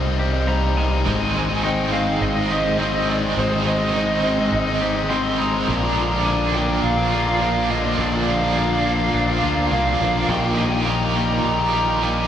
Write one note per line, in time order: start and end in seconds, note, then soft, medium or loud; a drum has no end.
0.00 1.02 C2 loud
0.00 0.20 C3 medium
0.00 0.49 D#3 medium
0.00 0.48 G3 medium
0.00 1.03 D#4 medium
0.00 0.19 G4 medium
0.00 5.64 C5 medium
0.00 0.84 D#5 loud
0.00 1.03 D#5 medium
0.00 1.04 F5 loud
0.05 0.20 G3 medium
0.05 0.21 C4 medium
0.05 0.21 D#4 medium
0.19 0.46 C3 medium
0.19 0.35 G3 medium
0.19 0.34 C4 medium
0.19 0.32 D#4 medium
0.19 1.09 G4 medium
0.33 0.48 G3 medium
0.33 0.48 C4 medium
0.33 0.49 D#4 medium
0.47 0.75 C3 medium
0.47 0.77 G3 medium
0.47 1.09 G3 medium
0.47 0.77 C4 loud
0.47 0.78 D#4 loud
0.47 0.78 A#5 loud
0.76 1.04 C3 medium
0.76 1.06 D#3 medium
0.76 0.93 G3 medium
0.76 0.92 C4 medium
0.76 0.91 D#4 loud
0.76 1.63 G#5 loud
0.91 1.06 G3 medium
0.91 1.07 C4 medium
0.91 1.08 D#4 medium
1.05 2.18 G#1 loud
1.05 1.63 G#2 loud
1.05 1.50 D#3 loud
1.05 1.34 G#3 medium
1.05 1.22 G#3 medium
1.05 1.21 C4 loud
1.05 5.64 D#4 medium
1.05 1.19 D#4 loud
1.05 5.64 D#5 medium
1.20 1.52 G#3 medium
1.20 1.50 C4 medium
1.20 1.49 D#4 medium
1.34 1.62 D#3 medium
1.34 2.79 G#3 medium
1.34 1.51 G#3 medium
1.34 1.49 C4 medium
1.34 1.48 D#4 medium
1.49 1.64 G#3 medium
1.49 1.65 C4 medium
1.49 1.65 D#4 medium
1.63 2.80 G#2 medium
1.63 1.91 D#3 medium
1.63 1.93 G#3 medium
1.63 1.94 C4 loud
1.63 2.21 D#4 medium
1.63 1.94 D#4 loud
1.63 1.92 G5 loud
1.92 2.36 D#3 medium
1.92 2.09 G#3 medium
1.92 2.78 C4 medium
1.92 2.07 C4 medium
1.92 2.06 D#4 medium
1.92 2.20 F5 medium
2.07 2.38 G#3 medium
2.07 2.37 C4 medium
2.07 2.35 D#4 medium
2.07 muted overdriven electric guitar stroke medium
2.22 3.33 G#1 loud
2.22 3.66 D#4 medium
2.22 2.79 D#5 medium
2.36 2.51 G#3 soft
2.36 2.51 C4 medium
2.36 2.52 D#4 medium
2.50 2.80 D#3 medium
2.50 2.67 G#3 medium
2.50 2.66 C4 medium
2.50 2.64 D#4 loud
2.50 3.95 G4 medium
2.65 2.80 G#3 medium
2.65 2.81 C4 medium
2.65 2.82 D#4 medium
2.65 muted overdriven electric guitar stroke medium
2.79 3.37 G#2 medium
2.79 3.07 D#3 loud
2.79 3.09 G#3 medium
2.79 4.22 C4 medium
2.79 3.09 C4 loud
2.79 3.10 D#4 medium
2.79 3.09 D#5 medium
3.08 3.37 D#3 medium
3.08 3.36 G#3 medium
3.08 3.25 G#3 loud
3.08 3.24 C4 medium
3.08 3.22 D#4 loud
3.08 3.39 D5 loud
3.24 3.38 G#3 medium
3.24 3.39 C4 medium
3.24 3.39 D#4 medium
3.37 4.49 G#1 loud
3.37 3.81 G#2 loud
3.37 3.81 D#3 loud
3.37 3.65 G#3 medium
3.37 3.54 G#3 loud
3.37 3.53 C4 loud
3.37 3.51 D#4 loud
3.37 3.67 C5 medium
3.52 3.82 G#3 medium
3.52 3.81 C4 medium
3.52 3.80 D#4 medium
3.64 3.93 D#3 medium
3.64 3.81 G#3 medium
3.64 5.10 G#3 medium
3.64 3.80 C4 medium
3.64 3.78 D#4 medium
3.64 5.15 D#5 medium
3.81 3.95 G#3 medium
3.81 3.96 C4 medium
3.81 3.96 D#4 medium
3.95 4.53 G#2 medium
3.95 4.23 D#3 medium
3.95 4.24 G#3 loud
3.95 4.24 C4 loud
3.95 4.51 D#4 medium
3.95 4.25 D#4 loud
4.24 4.67 D#3 medium
4.24 4.40 G#3 medium
4.24 5.09 C4 medium
4.24 4.38 C4 medium
4.24 4.37 D#4 medium
4.38 4.69 G#3 medium
4.38 4.68 C4 medium
4.38 4.66 D#4 medium
4.38 muted overdriven electric guitar stroke medium
4.52 5.64 G#1 loud
4.52 5.68 D#4 medium
4.67 4.81 G#3 medium
4.67 4.82 C4 medium
4.67 4.83 D#4 medium
4.81 5.10 D#3 medium
4.81 4.98 G#3 medium
4.81 4.97 C4 loud
4.81 4.95 D#4 medium
4.81 5.68 G4 medium
4.96 5.11 G#3 medium
4.96 5.12 C4 medium
4.96 5.12 D#4 medium
4.96 muted overdriven electric guitar stroke medium
5.10 5.67 G#2 medium
5.10 5.39 D#3 loud
5.10 5.40 G#3 medium
5.10 5.68 C4 medium
5.10 5.41 C4 loud
5.10 5.41 D#4 loud
5.10 5.39 C6 loud
5.40 5.67 D#3 medium
5.40 5.68 G#3 medium
5.40 5.56 G#3 loud
5.40 5.54 C4 medium
5.40 5.53 D#4 loud
5.40 6.28 A#5 loud
5.54 5.68 G#3 medium
5.54 5.67 C4 medium
5.54 5.67 D#4 medium
5.68 6.80 A#1 loud
5.68 6.25 A#2 medium
5.68 7.98 A#2 medium
5.68 5.84 F3 medium
5.68 5.84 A#3 medium
5.68 5.82 D4 loud
5.68 10.26 F4 medium
5.68 12.27 A#4 medium
5.68 12.27 F5 medium
5.68 10.26 A#5 loud
5.82 6.13 F3 medium
5.82 6.12 A#3 medium
5.82 6.11 D4 medium
5.96 6.25 A#2 medium
5.96 7.41 D3 medium
5.96 6.14 F3 medium
5.96 6.12 A#3 medium
5.96 6.11 D4 loud
6.11 6.26 F3 medium
6.11 6.27 A#3 medium
6.11 6.28 D4 medium
6.25 6.54 A#2 medium
6.25 6.55 F3 loud
6.25 6.56 A#3 loud
6.25 6.83 D4 medium
6.25 6.57 D4 loud
6.25 6.54 G#5 loud
6.54 7.12 A#2 medium
6.54 6.70 F3 medium
6.54 7.41 A#3 medium
6.54 6.69 A#3 medium
6.54 6.68 D4 medium
6.54 6.83 G5 medium
6.68 6.99 F3 medium
6.68 6.99 A#3 medium
6.68 6.97 D4 medium
6.68 muted overdriven electric guitar stroke medium
6.83 7.95 A#1 loud
6.83 8.56 D4 medium
6.83 7.40 F5 medium
6.98 7.12 F3 medium
6.98 7.14 A#3 medium
6.98 7.14 D4 medium
7.12 7.41 A#2 medium
7.12 7.28 F3 medium
7.12 7.28 A#3 medium
7.12 7.27 D4 medium
7.12 8.56 F4 medium
7.26 7.41 F3 medium
7.26 7.43 A#3 medium
7.26 7.43 D4 medium
7.26 muted overdriven electric guitar stroke medium
7.41 7.70 A#2 loud
7.41 7.70 F3 loud
7.41 8.85 A#3 medium
7.41 7.72 A#3 loud
7.41 7.73 D4 loud
7.41 7.68 F5 loud
7.70 7.99 A#2 medium
7.70 8.27 D3 medium
7.70 7.86 F3 loud
7.70 7.86 A#3 loud
7.70 7.84 D4 loud
7.70 7.97 D#5 medium
7.85 7.99 F3 medium
7.85 8.00 A#3 medium
7.85 8.02 D4 medium
7.99 9.10 A#1 loud
7.99 10.29 A#2 medium
7.99 8.56 A#2 loud
7.99 8.15 F3 loud
7.99 8.15 A#3 loud
7.99 8.13 D4 loud
7.99 8.29 D5 medium
8.14 8.44 F3 medium
8.14 8.43 A#3 medium
8.14 8.42 D4 medium
8.27 8.55 A#2 medium
8.27 9.72 D3 medium
8.27 8.43 F3 medium
8.27 8.42 A#3 medium
8.27 8.40 D4 loud
8.27 9.68 F5 loud
8.42 8.56 F3 medium
8.42 8.58 A#3 medium
8.42 8.59 D4 medium
8.57 8.85 A#2 loud
8.57 8.85 F3 loud
8.57 8.87 A#3 loud
8.57 9.14 D4 medium
8.57 8.88 D4 loud
8.85 9.42 A#2 medium
8.85 9.01 F3 medium
8.85 9.71 A#3 medium
8.85 9.00 A#3 medium
8.85 8.99 D4 medium
8.99 9.30 F3 medium
8.99 9.30 A#3 medium
8.99 9.28 D4 medium
8.99 muted overdriven electric guitar stroke medium
9.14 9.40 A#1 loud
9.14 10.61 D4 medium
9.28 9.43 F3 medium
9.28 9.44 A#3 medium
9.28 9.45 D4 medium
9.43 9.69 D2 medium
9.43 9.71 A#2 medium
9.43 9.58 F3 medium
9.43 9.58 A#3 medium
9.43 9.56 D4 medium
9.43 10.30 F4 medium
9.57 9.71 F3 medium
9.57 9.73 A#3 medium
9.57 9.74 D4 medium
9.57 muted overdriven electric guitar stroke medium
9.71 9.98 C2 loud
9.71 10.00 A#2 medium
9.71 10.00 F3 medium
9.71 11.15 A#3 medium
9.71 10.02 A#3 loud
9.71 10.03 D4 loud
9.71 10.25 F5 medium
10.00 10.26 A#1 medium
10.00 10.30 A#2 medium
10.00 10.29 D3 medium
10.00 10.17 F3 loud
10.00 10.16 A#3 medium
10.00 10.15 D4 medium
10.15 10.29 F3 medium
10.15 10.31 A#3 medium
10.15 10.32 D4 medium
10.29 11.41 A#1 loud
10.29 11.74 A#2 medium
10.29 10.87 A#2 loud
10.29 10.73 D#3 loud
10.29 10.47 A#3 loud
10.29 12.27 D#4 medium
10.29 10.46 D#4 loud
10.29 10.56 G5 medium
10.29 12.27 A#5 medium
10.33 10.44 G4 loud
10.45 10.75 A#3 medium
10.45 10.74 D#4 medium
10.45 10.73 G4 medium
10.57 10.85 D#3 medium
10.57 12.02 D#3 medium
10.57 10.74 A#3 medium
10.57 10.73 D#4 medium
10.57 10.71 G4 loud
10.57 10.88 G#5 loud
10.73 10.88 A#3 medium
10.73 10.89 D#4 medium
10.73 10.89 G4 medium
10.87 12.02 A#2 medium
10.87 11.15 D#3 medium
10.87 11.16 A#3 medium
10.87 11.17 D#4 loud
10.87 11.18 G4 loud
10.87 11.43 A#5 loud
11.16 11.59 D#3 medium
11.16 12.02 G3 medium
11.16 11.32 A#3 medium
11.16 11.32 D#4 medium
11.16 11.30 G4 medium
11.30 11.60 A#3 medium
11.30 11.60 D#4 medium
11.30 11.59 G4 medium
11.30 muted overdriven electric guitar stroke medium
11.44 12.27 A#1 medium
11.44 12.04 A#5 medium
11.59 11.73 A#3 medium
11.59 11.75 D#4 medium
11.59 11.76 G4 medium
11.73 12.01 D#3 medium
11.73 11.89 A#3 medium
11.73 11.89 D#4 medium
11.73 12.27 G4 medium
11.73 11.87 G4 medium
11.88 12.02 A#3 medium
11.88 12.04 D#4 medium
11.88 12.04 G4 medium
11.88 muted overdriven electric guitar stroke medium
12.02 12.27 A#2 medium
12.02 12.27 D#3 loud
12.02 12.27 G3 medium
12.02 12.27 A#3 loud
12.02 12.27 D#4 loud
12.02 12.27 G4 loud
12.02 12.27 G#5 medium